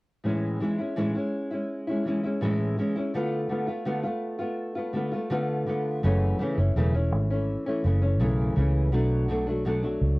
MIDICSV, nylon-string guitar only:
0, 0, Header, 1, 2, 480
1, 0, Start_track
1, 0, Key_signature, 3, "major"
1, 0, Tempo, 723764
1, 162, Time_signature, 4, 2, 24, 8
1, 6760, End_track
2, 0, Start_track
2, 0, Title_t, "Nylon-string guitar"
2, 0, Program_c, 0, 24
2, 156, Note_on_c, 0, 45, 65
2, 163, Note_on_c, 0, 52, 68
2, 165, Note_on_c, 0, 56, 69
2, 169, Note_on_c, 0, 61, 69
2, 173, Note_on_c, 0, 64, 72
2, 392, Note_off_c, 0, 52, 0
2, 399, Note_off_c, 0, 45, 0
2, 400, Note_on_c, 0, 52, 59
2, 401, Note_off_c, 0, 56, 0
2, 406, Note_off_c, 0, 61, 0
2, 408, Note_off_c, 0, 64, 0
2, 408, Note_on_c, 0, 56, 63
2, 415, Note_on_c, 0, 61, 59
2, 420, Note_on_c, 0, 64, 63
2, 511, Note_off_c, 0, 64, 0
2, 519, Note_on_c, 0, 64, 48
2, 521, Note_off_c, 0, 52, 0
2, 524, Note_off_c, 0, 61, 0
2, 526, Note_off_c, 0, 56, 0
2, 532, Note_on_c, 0, 61, 48
2, 539, Note_on_c, 0, 56, 39
2, 637, Note_on_c, 0, 45, 71
2, 638, Note_off_c, 0, 56, 0
2, 641, Note_off_c, 0, 64, 0
2, 641, Note_on_c, 0, 52, 68
2, 642, Note_off_c, 0, 61, 0
2, 645, Note_on_c, 0, 56, 80
2, 650, Note_on_c, 0, 61, 76
2, 654, Note_on_c, 0, 64, 64
2, 750, Note_off_c, 0, 64, 0
2, 758, Note_on_c, 0, 64, 47
2, 760, Note_off_c, 0, 45, 0
2, 760, Note_off_c, 0, 61, 0
2, 762, Note_off_c, 0, 52, 0
2, 764, Note_off_c, 0, 56, 0
2, 768, Note_on_c, 0, 61, 44
2, 779, Note_on_c, 0, 56, 42
2, 993, Note_off_c, 0, 64, 0
2, 1001, Note_on_c, 0, 64, 48
2, 1004, Note_off_c, 0, 61, 0
2, 1011, Note_off_c, 0, 56, 0
2, 1012, Note_on_c, 0, 61, 41
2, 1019, Note_on_c, 0, 56, 40
2, 1234, Note_off_c, 0, 64, 0
2, 1242, Note_on_c, 0, 64, 55
2, 1245, Note_off_c, 0, 61, 0
2, 1251, Note_off_c, 0, 56, 0
2, 1253, Note_on_c, 0, 61, 51
2, 1264, Note_on_c, 0, 56, 44
2, 1359, Note_on_c, 0, 52, 52
2, 1361, Note_off_c, 0, 56, 0
2, 1362, Note_off_c, 0, 64, 0
2, 1368, Note_off_c, 0, 61, 0
2, 1369, Note_on_c, 0, 56, 51
2, 1375, Note_on_c, 0, 61, 52
2, 1381, Note_on_c, 0, 64, 52
2, 1474, Note_off_c, 0, 64, 0
2, 1481, Note_off_c, 0, 52, 0
2, 1482, Note_on_c, 0, 64, 48
2, 1486, Note_off_c, 0, 56, 0
2, 1486, Note_off_c, 0, 61, 0
2, 1494, Note_on_c, 0, 61, 47
2, 1503, Note_on_c, 0, 56, 41
2, 1598, Note_on_c, 0, 45, 77
2, 1599, Note_off_c, 0, 56, 0
2, 1602, Note_off_c, 0, 61, 0
2, 1602, Note_off_c, 0, 64, 0
2, 1605, Note_on_c, 0, 52, 80
2, 1607, Note_on_c, 0, 56, 81
2, 1610, Note_on_c, 0, 61, 87
2, 1614, Note_on_c, 0, 64, 74
2, 1831, Note_off_c, 0, 52, 0
2, 1839, Note_on_c, 0, 52, 51
2, 1840, Note_off_c, 0, 45, 0
2, 1840, Note_off_c, 0, 56, 0
2, 1846, Note_off_c, 0, 61, 0
2, 1848, Note_off_c, 0, 64, 0
2, 1848, Note_on_c, 0, 56, 56
2, 1854, Note_on_c, 0, 61, 65
2, 1860, Note_on_c, 0, 64, 53
2, 1952, Note_off_c, 0, 64, 0
2, 1960, Note_on_c, 0, 64, 47
2, 1961, Note_off_c, 0, 52, 0
2, 1963, Note_off_c, 0, 61, 0
2, 1966, Note_off_c, 0, 56, 0
2, 1971, Note_on_c, 0, 61, 45
2, 1980, Note_on_c, 0, 56, 35
2, 2082, Note_off_c, 0, 64, 0
2, 2082, Note_on_c, 0, 50, 68
2, 2086, Note_off_c, 0, 56, 0
2, 2087, Note_off_c, 0, 61, 0
2, 2089, Note_on_c, 0, 57, 76
2, 2091, Note_on_c, 0, 59, 73
2, 2098, Note_on_c, 0, 65, 74
2, 2308, Note_off_c, 0, 50, 0
2, 2316, Note_off_c, 0, 57, 0
2, 2316, Note_on_c, 0, 50, 65
2, 2323, Note_off_c, 0, 59, 0
2, 2324, Note_on_c, 0, 57, 62
2, 2327, Note_off_c, 0, 65, 0
2, 2331, Note_on_c, 0, 59, 61
2, 2335, Note_on_c, 0, 65, 63
2, 2426, Note_off_c, 0, 65, 0
2, 2434, Note_on_c, 0, 65, 52
2, 2438, Note_off_c, 0, 59, 0
2, 2439, Note_off_c, 0, 50, 0
2, 2444, Note_off_c, 0, 57, 0
2, 2446, Note_on_c, 0, 59, 42
2, 2455, Note_on_c, 0, 57, 41
2, 2553, Note_off_c, 0, 57, 0
2, 2555, Note_on_c, 0, 50, 66
2, 2557, Note_off_c, 0, 59, 0
2, 2558, Note_off_c, 0, 65, 0
2, 2561, Note_on_c, 0, 57, 74
2, 2565, Note_on_c, 0, 59, 76
2, 2571, Note_on_c, 0, 65, 74
2, 2666, Note_off_c, 0, 65, 0
2, 2674, Note_on_c, 0, 65, 56
2, 2676, Note_off_c, 0, 59, 0
2, 2679, Note_off_c, 0, 50, 0
2, 2682, Note_off_c, 0, 57, 0
2, 2684, Note_on_c, 0, 59, 49
2, 2693, Note_on_c, 0, 57, 47
2, 2901, Note_off_c, 0, 65, 0
2, 2909, Note_on_c, 0, 65, 47
2, 2914, Note_off_c, 0, 59, 0
2, 2922, Note_off_c, 0, 57, 0
2, 2922, Note_on_c, 0, 59, 47
2, 2930, Note_on_c, 0, 57, 38
2, 3144, Note_off_c, 0, 65, 0
2, 3152, Note_on_c, 0, 65, 58
2, 3157, Note_off_c, 0, 59, 0
2, 3165, Note_on_c, 0, 59, 46
2, 3166, Note_off_c, 0, 57, 0
2, 3174, Note_on_c, 0, 57, 47
2, 3269, Note_on_c, 0, 50, 50
2, 3270, Note_off_c, 0, 57, 0
2, 3276, Note_off_c, 0, 59, 0
2, 3277, Note_off_c, 0, 65, 0
2, 3277, Note_on_c, 0, 57, 51
2, 3284, Note_on_c, 0, 59, 57
2, 3290, Note_on_c, 0, 65, 62
2, 3386, Note_off_c, 0, 65, 0
2, 3394, Note_on_c, 0, 65, 46
2, 3396, Note_off_c, 0, 50, 0
2, 3398, Note_off_c, 0, 59, 0
2, 3400, Note_off_c, 0, 57, 0
2, 3406, Note_on_c, 0, 59, 50
2, 3416, Note_on_c, 0, 57, 42
2, 3512, Note_off_c, 0, 57, 0
2, 3515, Note_on_c, 0, 50, 78
2, 3517, Note_off_c, 0, 59, 0
2, 3518, Note_off_c, 0, 65, 0
2, 3520, Note_on_c, 0, 57, 77
2, 3525, Note_on_c, 0, 59, 91
2, 3529, Note_on_c, 0, 65, 81
2, 3747, Note_off_c, 0, 50, 0
2, 3754, Note_off_c, 0, 57, 0
2, 3755, Note_on_c, 0, 50, 57
2, 3762, Note_on_c, 0, 57, 58
2, 3764, Note_off_c, 0, 59, 0
2, 3766, Note_off_c, 0, 65, 0
2, 3771, Note_on_c, 0, 59, 63
2, 3775, Note_on_c, 0, 65, 59
2, 3999, Note_off_c, 0, 50, 0
2, 3999, Note_on_c, 0, 42, 76
2, 4002, Note_on_c, 0, 49, 75
2, 4003, Note_off_c, 0, 57, 0
2, 4007, Note_off_c, 0, 59, 0
2, 4007, Note_on_c, 0, 52, 80
2, 4009, Note_off_c, 0, 65, 0
2, 4010, Note_on_c, 0, 57, 84
2, 4013, Note_on_c, 0, 61, 78
2, 4229, Note_off_c, 0, 49, 0
2, 4237, Note_on_c, 0, 49, 63
2, 4238, Note_off_c, 0, 52, 0
2, 4241, Note_off_c, 0, 42, 0
2, 4243, Note_off_c, 0, 57, 0
2, 4246, Note_on_c, 0, 52, 68
2, 4248, Note_off_c, 0, 61, 0
2, 4251, Note_on_c, 0, 57, 69
2, 4258, Note_on_c, 0, 61, 74
2, 4352, Note_off_c, 0, 61, 0
2, 4360, Note_off_c, 0, 49, 0
2, 4360, Note_on_c, 0, 61, 54
2, 4365, Note_off_c, 0, 52, 0
2, 4365, Note_off_c, 0, 57, 0
2, 4373, Note_on_c, 0, 57, 44
2, 4382, Note_on_c, 0, 52, 38
2, 4482, Note_off_c, 0, 52, 0
2, 4482, Note_off_c, 0, 61, 0
2, 4483, Note_on_c, 0, 42, 69
2, 4486, Note_off_c, 0, 57, 0
2, 4486, Note_on_c, 0, 49, 71
2, 4490, Note_on_c, 0, 52, 75
2, 4494, Note_on_c, 0, 57, 69
2, 4497, Note_on_c, 0, 61, 76
2, 4597, Note_off_c, 0, 61, 0
2, 4603, Note_off_c, 0, 42, 0
2, 4605, Note_off_c, 0, 49, 0
2, 4605, Note_on_c, 0, 61, 53
2, 4606, Note_off_c, 0, 52, 0
2, 4607, Note_off_c, 0, 57, 0
2, 4615, Note_on_c, 0, 57, 55
2, 4623, Note_on_c, 0, 52, 42
2, 4836, Note_off_c, 0, 61, 0
2, 4844, Note_on_c, 0, 61, 51
2, 4849, Note_off_c, 0, 57, 0
2, 4853, Note_off_c, 0, 52, 0
2, 4856, Note_on_c, 0, 57, 42
2, 4865, Note_on_c, 0, 52, 45
2, 5074, Note_off_c, 0, 61, 0
2, 5082, Note_on_c, 0, 61, 55
2, 5085, Note_off_c, 0, 57, 0
2, 5093, Note_on_c, 0, 57, 54
2, 5094, Note_off_c, 0, 52, 0
2, 5102, Note_on_c, 0, 52, 47
2, 5198, Note_off_c, 0, 52, 0
2, 5199, Note_on_c, 0, 49, 55
2, 5202, Note_off_c, 0, 61, 0
2, 5204, Note_off_c, 0, 57, 0
2, 5206, Note_on_c, 0, 52, 46
2, 5212, Note_on_c, 0, 57, 57
2, 5220, Note_on_c, 0, 61, 59
2, 5311, Note_off_c, 0, 61, 0
2, 5319, Note_on_c, 0, 61, 50
2, 5321, Note_off_c, 0, 49, 0
2, 5323, Note_off_c, 0, 57, 0
2, 5324, Note_off_c, 0, 52, 0
2, 5331, Note_on_c, 0, 57, 42
2, 5340, Note_on_c, 0, 52, 38
2, 5436, Note_off_c, 0, 52, 0
2, 5436, Note_on_c, 0, 42, 70
2, 5439, Note_off_c, 0, 57, 0
2, 5441, Note_off_c, 0, 61, 0
2, 5441, Note_on_c, 0, 49, 79
2, 5444, Note_on_c, 0, 52, 89
2, 5447, Note_on_c, 0, 57, 80
2, 5451, Note_on_c, 0, 61, 85
2, 5669, Note_off_c, 0, 49, 0
2, 5677, Note_off_c, 0, 52, 0
2, 5677, Note_on_c, 0, 49, 55
2, 5679, Note_off_c, 0, 42, 0
2, 5683, Note_off_c, 0, 57, 0
2, 5685, Note_on_c, 0, 52, 59
2, 5687, Note_off_c, 0, 61, 0
2, 5691, Note_on_c, 0, 57, 61
2, 5698, Note_on_c, 0, 61, 60
2, 5913, Note_off_c, 0, 49, 0
2, 5916, Note_on_c, 0, 47, 64
2, 5918, Note_off_c, 0, 52, 0
2, 5918, Note_off_c, 0, 57, 0
2, 5921, Note_on_c, 0, 54, 67
2, 5926, Note_on_c, 0, 57, 67
2, 5927, Note_off_c, 0, 61, 0
2, 5930, Note_on_c, 0, 62, 69
2, 6148, Note_off_c, 0, 47, 0
2, 6156, Note_off_c, 0, 54, 0
2, 6156, Note_on_c, 0, 47, 54
2, 6164, Note_off_c, 0, 57, 0
2, 6164, Note_on_c, 0, 54, 64
2, 6166, Note_off_c, 0, 62, 0
2, 6171, Note_on_c, 0, 57, 74
2, 6176, Note_on_c, 0, 62, 68
2, 6270, Note_off_c, 0, 62, 0
2, 6278, Note_on_c, 0, 62, 52
2, 6279, Note_off_c, 0, 47, 0
2, 6283, Note_off_c, 0, 54, 0
2, 6283, Note_off_c, 0, 57, 0
2, 6291, Note_on_c, 0, 57, 52
2, 6301, Note_on_c, 0, 54, 40
2, 6398, Note_off_c, 0, 54, 0
2, 6400, Note_off_c, 0, 62, 0
2, 6400, Note_on_c, 0, 47, 68
2, 6403, Note_off_c, 0, 57, 0
2, 6406, Note_on_c, 0, 54, 70
2, 6411, Note_on_c, 0, 57, 80
2, 6415, Note_on_c, 0, 62, 74
2, 6508, Note_off_c, 0, 62, 0
2, 6516, Note_on_c, 0, 62, 48
2, 6518, Note_off_c, 0, 57, 0
2, 6521, Note_off_c, 0, 47, 0
2, 6524, Note_off_c, 0, 54, 0
2, 6526, Note_on_c, 0, 57, 53
2, 6537, Note_on_c, 0, 54, 41
2, 6749, Note_off_c, 0, 62, 0
2, 6760, Note_off_c, 0, 54, 0
2, 6760, Note_off_c, 0, 57, 0
2, 6760, End_track
0, 0, End_of_file